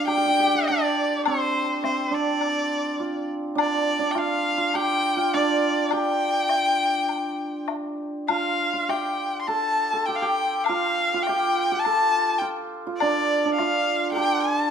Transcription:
Already playing: hammered dulcimer D4 F4
0.07 hammered dulcimer G4, erhu G5, high woodblock
0.17 hammered dulcimer G4
0.26 hammered dulcimer G4
0.31 hammered dulcimer G4
0.40 hammered dulcimer G4
0.47 hammered dulcimer G4
0.55 hammered dulcimer G4
0.67 hammered dulcimer D4, erhu D5
1.26 hammered dulcimer C4, erhu C5, high woodblock
1.83 hammered dulcimer C4, erhu C5, low woodblock
2.11 hammered dulcimer D4, erhu D5
2.41 high woodblock
3.00 hammered dulcimer F4
3.55 hammered dulcimer D4, erhu D5, high woodblock
3.99 hammered dulcimer D4
4.11 erhu G5
4.15 hammered dulcimer F4, erhu F5, low woodblock
4.58 hammered dulcimer F4
4.74 hammered dulcimer G4, erhu G5, high woodblock
5.17 hammered dulcimer F4
5.34 hammered dulcimer D4, erhu D5
5.91 hammered dulcimer G4, erhu G5, high woodblock
6.49 low woodblock
7.09 high woodblock
7.68 high woodblock, low woodblock
8.28 hammered dulcimer F4, erhu F5, high woodblock
8.73 hammered dulcimer F4
8.89 hammered dulcimer G4, erhu G5, low woodblock
9.41 erhu C6
9.47 hammered dulcimer A4, erhu A5, high woodblock
9.93 hammered dulcimer A4
10.05 hammered dulcimer G4, erhu G5
10.16 erhu F5 G5
10.22 hammered dulcimer G4
10.60 erhu F5 G5
10.66 hammered dulcimer F4, high woodblock
11.14 hammered dulcimer F4
11.22 erhu G5
11.27 hammered dulcimer G4, low woodblock
11.72 hammered dulcimer G4
11.79 erhu A5
11.85 hammered dulcimer A4, high woodblock
12.38 hammered dulcimer F4, erhu G5
12.87 hammered dulcimer F4
12.97 erhu D5, high woodblock
13.02 hammered dulcimer D4
13.45 hammered dulcimer D4
13.54 erhu F5
13.58 hammered dulcimer F4, low woodblock
14.11 hammered dulcimer A4, erhu G5
14.16 hammered dulcimer G4, high woodblock
14.40 erhu A5

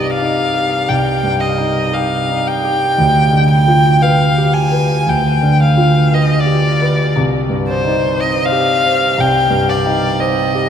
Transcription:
Already playing: grand piano C2 G2 D#4 G4, violin D#5
0.12 violin F5
0.20 grand piano D#4
0.54 grand piano G4
0.89 grand piano C2, violin G5
1.23 grand piano G2
1.40 violin D#5
1.58 grand piano D#4
1.92 grand piano G4, violin F5
2.29 grand piano D#4
2.47 violin G5
2.64 grand piano G4
2.98 grand piano D2
3.32 grand piano D3
3.50 violin G5
3.68 grand piano F4
4.02 grand piano B4, violin F5
4.38 grand piano G4
4.53 violin G#5
4.72 grand piano B4
5.07 grand piano D2, violin G5
5.42 grand piano D3
5.62 violin F5
5.77 grand piano F4
6.13 grand piano B4, violin D#5
6.39 violin D5
6.46 grand piano G4
6.81 grand piano B4
7.16 grand piano C2
7.49 grand piano G2
7.69 violin C5
7.85 grand piano D#4
8.18 grand piano C5, violin D#5
8.45 violin F5
8.52 grand piano G4
8.85 grand piano C5
9.18 grand piano C2, violin G5
9.50 grand piano G2
9.69 violin D5
9.86 grand piano D#4
10.20 grand piano C5, violin D#5
10.55 grand piano G4

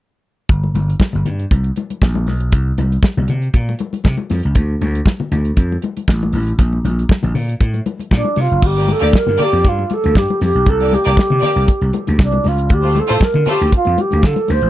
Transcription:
0.49 slap bass G1, kick, closed hi-hat
0.64 muted conga
0.74 slap bass G1, closed hi-hat, high conga
0.90 closed hi-hat
1.00 kick, snare, muted conga, high conga
1.13 slap bass G1, closed hi-hat, low conga
1.26 slap bass G2, closed hi-hat, low conga
1.39 closed hi-hat
1.51 slap bass C2, kick, closed hi-hat, muted conga
1.64 closed hi-hat
1.76 closed hi-hat, high conga
1.90 closed hi-hat, high conga
2.02 slap bass A#1, kick, snare
2.15 muted conga, high conga
2.27 slap bass B1, snare, open hi-hat, high conga
2.40 closed hi-hat
2.52 slap bass C2, kick, closed hi-hat
2.78 slap bass C2, closed hi-hat, high conga
2.92 closed hi-hat
3.03 kick, snare, high conga
3.17 slap bass C2, low conga
3.28 slap bass C3, closed hi-hat, low conga
3.42 closed hi-hat
3.54 slap bass A#2, kick, closed hi-hat, muted conga
3.69 muted conga
3.79 closed hi-hat, high conga
3.93 closed hi-hat, high conga
4.04 slap bass C3, kick, snare, muted conga
4.17 closed hi-hat, high conga
4.30 slap bass F2, snare, open hi-hat, high conga
4.43 slap bass C#2, closed hi-hat
4.55 slap bass D2, kick, closed hi-hat
4.81 slap bass D2, closed hi-hat, high conga
4.95 closed hi-hat
5.06 kick, snare, high conga
5.20 muted conga, low conga
5.32 slap bass D2, closed hi-hat, low conga
5.45 closed hi-hat
5.57 slap bass F2, kick, closed hi-hat
5.72 muted conga
5.82 closed hi-hat, high conga
5.97 closed hi-hat, high conga
6.08 slap bass A1, kick, snare
6.20 closed hi-hat, high conga
6.33 slap bass A1, open hi-hat, high conga
6.47 closed hi-hat
6.59 slap bass A#1, kick, closed hi-hat, muted conga
6.73 muted conga
6.84 slap bass A#1, closed hi-hat, high conga
6.99 closed hi-hat
7.09 kick, snare, high conga
7.23 slap bass A#1, closed hi-hat, muted conga, low conga
7.34 slap bass A#2, open hi-hat, low conga
7.49 closed hi-hat
7.61 slap bass A2, kick, closed hi-hat, muted conga
7.74 closed hi-hat, muted conga
7.86 closed hi-hat, high conga
7.99 closed hi-hat, high conga
8.11 slap bass A#2, alto flute D4, kick, snare, muted conga
8.24 high conga
8.36 slap bass C3, alto flute F4, open hi-hat, high conga
8.50 slap bass F#1, closed hi-hat
8.62 slap bass G1, alto flute G4, kick, crash
8.76 violin section A#3 G4 D5, closed hi-hat, muted conga
8.88 alto flute A4, closed hi-hat, high conga
9.00 slap bass D2, violin section A#3 G4 D5, closed hi-hat
9.13 alto flute A#4, muted slap bass stroke, kick, snare, high conga
9.27 slap bass G2, closed hi-hat, muted conga, low conga
9.37 violin section A#3 G4 D5, closed hi-hat, low conga
9.43 alto flute G4
9.53 slap bass F2, closed hi-hat
9.64 slap bass G2, alto flute F4, kick, closed hi-hat
9.79 muted conga
9.90 alto flute A4, closed hi-hat, high conga
10.04 slap bass D2, closed hi-hat, high conga
10.15 slap bass G2, alto flute G4, kick, snare, muted conga
10.28 closed hi-hat, muted conga, high conga
10.41 slap bass F2, alto flute G4, snare, open hi-hat, high conga
10.55 slap bass B1, closed hi-hat
10.66 slap bass C2, alto flute A4, kick, closed hi-hat, muted conga
10.80 violin section A#3 G4 D5, closed hi-hat, muted conga
10.93 alto flute G4, closed hi-hat, high conga
11.04 slap bass C2, violin section A#3 G4 D5, closed hi-hat
11.17 muted slap bass stroke, kick, snare, muted conga, high conga
11.30 slap bass C3, low conga
11.40 violin section A#3 G4 D5, closed hi-hat, low conga
11.56 slap bass C2, closed hi-hat
11.68 kick, closed hi-hat, muted conga
11.81 slap bass C2, closed hi-hat
11.93 closed hi-hat, high conga
12.07 slap bass D2, closed hi-hat, high conga
12.18 slap bass C2, alto flute D4, kick, snare, muted conga
12.31 closed hi-hat, muted conga, high conga
12.44 slap bass C#2, alto flute F4, snare, open hi-hat, high conga
12.58 closed hi-hat
12.69 slap bass D2, alto flute G4, kick, closed hi-hat
12.82 violin section A3 F4 C5, muted conga
12.95 alto flute A4, closed hi-hat, high conga
13.08 slap bass A2, violin section A3 F4 C5, closed hi-hat
13.20 alto flute A#4, muted slap bass stroke, kick, snare, muted conga, high conga
13.34 slap bass D3, closed hi-hat, low conga
13.46 violin section A3 F4 C5, alto flute G4, closed hi-hat, low conga
13.60 slap bass D2, closed hi-hat
13.72 alto flute F4, kick, closed hi-hat, muted conga
13.85 slap bass F2, closed hi-hat, muted conga
13.98 alto flute G4, closed hi-hat, high conga
14.11 slap bass D2, closed hi-hat, high conga
14.22 slap bass D3, alto flute A4, kick, snare, muted conga
14.36 closed hi-hat, muted conga, high conga
14.48 slap bass D2, alto flute C5, snare, open hi-hat, high conga
14.62 slap bass A1, closed hi-hat

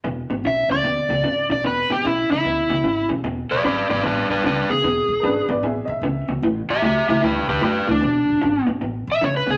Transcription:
0.04 upright bass E1, clean electric guitar E2 B2
0.30 upright bass G#1, clean electric guitar E2 B2
0.44 upright bass B1, clean electric guitar E2 C#3, electric slide guitar E5
0.69 upright bass C#2, clean electric guitar E2 C#3, electric slide guitar D5
0.83 upright bass D2, clean electric guitar E2 B2
1.09 upright bass C#2, clean electric guitar E2 B2
1.23 upright bass G#1, clean electric guitar E2 C#3
1.49 upright bass B1, clean electric guitar E2 C#3, electric slide guitar D5
1.64 upright bass E1, clean electric guitar E2 B2, electric slide guitar B4
1.90 upright bass G#1, clean electric guitar E2 B2, electric slide guitar G4
2.03 upright bass B1, clean electric guitar E2 C#3, electric slide guitar E4
2.30 upright bass C#2, clean electric guitar E2 C#3, electric slide guitar E4
2.44 upright bass D2, clean electric guitar E2 B2
2.69 upright bass C#2, clean electric guitar E2 B2
2.84 upright bass G#1, clean electric guitar E2 C#3
3.09 upright bass B1, clean electric guitar E2 C#3
3.24 upright bass E1, clean electric guitar E2 B2
3.50 upright bass E1, electric slide guitar B4 D5
3.64 upright bass G#1, clean electric guitar E2 C#3, electric slide guitar B4 D5
3.89 upright bass G#1, clean electric guitar E2 B2, electric slide guitar B4 D5
4.03 upright bass A1, clean electric guitar E2 B2, electric slide guitar D4 B4
4.29 upright bass A1, electric slide guitar D4 B4
4.44 upright bass C#2, clean electric guitar E2 C#3, electric slide guitar D4 B4
4.69 upright bass C#2, clean electric guitar E2 B2, electric slide guitar G#4
4.84 upright bass E1, clean electric guitar E2 B2
5.08 upright bass E1
5.20 upright bass G#1, clean electric guitar E2, upright piano D4 A#4
5.24 clean electric guitar C#3, upright piano B4
5.49 upright bass G#1, clean electric guitar E2 B2, upright piano B4 D5
5.63 upright bass A1, clean electric guitar E2 B2, upright piano G#4 E5
5.85 upright bass A1, upright piano D#5
5.89 upright piano E5
6.02 upright bass C#2, clean electric guitar E2 C#3
6.28 upright bass C#2, clean electric guitar E2 B2
6.42 upright bass A1, clean electric guitar A2 E3
6.69 upright bass A1, electric slide guitar G4 E5
6.82 upright bass C#2, clean electric guitar A2 F#3, electric slide guitar G4 E5
7.08 upright bass C#2, clean electric guitar A2 E3, electric slide guitar G4 E5
7.22 upright bass D2, clean electric guitar A2 E3, electric slide guitar G4 B4
7.48 upright bass D2, electric slide guitar G4 B4
7.61 upright bass F#2, clean electric guitar A2 F#3, electric slide guitar G4 B4
7.87 upright bass D2, clean electric guitar A2 E3, electric slide guitar D4
8.01 upright bass E1, clean electric guitar E2 B2
8.28 upright bass E1
8.41 upright bass G#1, clean electric guitar E2 C#3
8.67 upright bass G#1, clean electric guitar E2 B2
8.81 upright bass A1, clean electric guitar E2 B2
9.07 upright bass A1
9.12 electric slide guitar E5
9.21 upright bass C#2, clean electric guitar E2 C#3, electric slide guitar C#5
9.37 electric slide guitar B4
9.46 upright bass C#2, clean electric guitar E2 B2, electric slide guitar G#4

